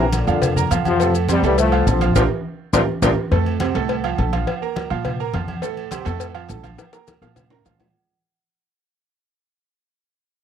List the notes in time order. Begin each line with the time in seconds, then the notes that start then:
Already playing: A#1
0.00 A#3 A#4 A#5
0.13 A#2 D3, cowbell, high conga, low agogo, maracas
0.27 F2 F3 F4 F5, high conga, low agogo, maracas
0.42 cowbell, high conga, low conga, low agogo, maracas
0.56 A#3 A#4 A#5, high conga, low conga, maracas
0.71 F2 F3 F4 F5, cowbell, high conga, low agogo, maracas
0.85 C3 F3, high conga, low agogo, maracas
1.00 A2 A3 A4, cowbell, high conga, maracas
1.14 high conga, low agogo, maracas
1.29 C3 G3 C4 C5, cowbell, high conga, low agogo, maracas
1.43 C2 A2 E3 G3 A3 A4, cowbell, high conga, maracas
1.58 F3 A3, cowbell, high conga, low agogo, maracas
1.72 F3 F4 F5, high conga, low agogo
1.87 A#1 C3 F3 A3 A4 A5, cowbell, high conga, maracas
2.01 F3 F4 F5, cowbell, high conga, low agogo, maracas
2.15 A#1 A#2 D3 F3 F4 G4 A#4, cowbell, high conga, high timbale, maracas
2.73 A#1 A#2 D3 F3 F4 G4 A#4, cowbell, high conga, high timbale, maracas
3.02 A#1 A#2 D3 F3 F4 G4 A#4, cowbell, high conga, high timbale, maracas
3.31 F2 A2 A3 A4, cowbell, high conga
3.46 high conga, low agogo
3.60 C3 C4 C5, cowbell, high conga, low agogo
3.75 C2 A2 A3 A4, cowbell, high conga
3.89 cowbell, high conga, low agogo
4.04 F3 F4 F5, high conga, low agogo
4.18 A#1 A3 A4 A5, cowbell, high conga
4.33 F3 F4 F5, cowbell, high conga, low agogo
4.47 cowbell, high conga, low agogo
4.62 A#3 A#4 A#5, high conga
4.76 cowbell, high conga, low agogo
4.90 A#2 F3 F4 F5, high conga, low agogo
5.05 cowbell, high conga, low conga, low agogo
5.20 A#3 A#4 A#5, high conga
5.34 F2 F3 F4 F5, cowbell, high conga, low agogo
5.48 high conga, low agogo
5.62 A2 A3 A4, cowbell, high conga, maracas
5.77 high conga, low agogo
5.91 C3 C4 C5, cowbell, high conga, low agogo, maracas
6.05 F2 A2 A3 A4, cowbell, high conga, maracas
6.20 cowbell, high conga, low agogo, maracas
6.34 F3 F4 F5, high conga, low agogo
6.49 A#1 A3 A4 A5, cowbell, high conga, low timbale, maracas
6.63 F3 F4 F5, cowbell, high conga, low agogo, maracas
6.78 cowbell, high bongo, high conga, low agogo, maracas
6.93 A#3 A#4 A#5, high bongo, high conga, maracas
7.07 cowbell, high bongo, high conga, low agogo, maracas
7.22 A#2 F3 F4 F5, high bongo, high conga, low agogo, maracas
7.36 cowbell, low bongo, high conga, low conga, high timbale, low agogo, maracas
7.50 A#3 A#4 A#5, low bongo, high conga, high timbale
7.65 A#2 F3 F4 F5, cowbell, low bongo, high conga, low timbale, low agogo, maracas
7.80 low bongo, high conga, low timbale, low agogo, maracas